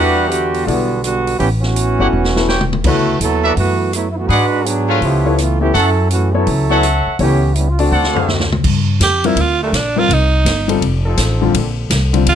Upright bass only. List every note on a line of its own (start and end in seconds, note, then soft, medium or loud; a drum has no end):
0.00 0.63 E2 medium
0.67 1.36 B1 medium
1.40 1.95 A1 medium
1.99 2.11 G1 medium
2.13 2.81 E1 medium
2.84 3.18 D2 medium
3.20 3.54 D#2 medium
3.57 4.26 F#2 medium
4.29 4.98 G#2 medium
5.01 5.70 C#2 medium
5.75 6.44 F#2 medium
6.47 7.02 C#2 medium
7.07 muted upright bass stroke soft
7.19 7.88 C#2 medium
7.91 8.61 D2 medium
8.64 9.00 G2 medium
9.00 9.35 F2 medium
9.36 9.72 D2 medium
9.72 10.08 A#1 medium
10.09 10.44 C2 medium
10.45 10.81 G1 medium
10.81 11.17 F1 medium
11.17 11.53 A1 medium
11.54 11.89 A#1 medium
11.90 12.26 C2 medium
12.26 12.35 D2 medium